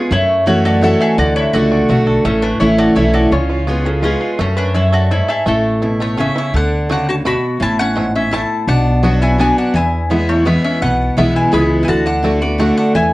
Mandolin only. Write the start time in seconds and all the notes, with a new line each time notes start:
0.12 E4
0.47 F#4
0.65 F#4
0.84 A4
1.02 G#4
1.19 F#4
1.36 E4
1.54 F#4
2.25 C#4
2.42 D4
2.61 E4
2.79 F#4
2.96 E4
3.14 F#4
3.32 F4
3.86 C#4
4.04 C#4
4.41 C#4
4.58 D4
4.76 E4
4.94 F#4
5.12 E4
5.30 G#4
5.48 A4
6.02 C#5
6.20 E5
6.38 E5
6.56 F#5
6.92 F#5
7.10 A5
7.26 B5
7.62 A5
7.79 F#5
8.16 E5
8.34 A5
8.68 F#5
9.23 G#5
9.41 G#5
9.58 F#5
9.75 G#5
10.11 E5
10.29 C#5
10.47 E5
10.65 E5
10.82 F#5
11.18 E5
11.36 G#5
11.54 B5
11.85 G#5
11.89 A5
12.07 F#5
12.42 D5
12.59 F#5
12.77 F#5
12.95 G#5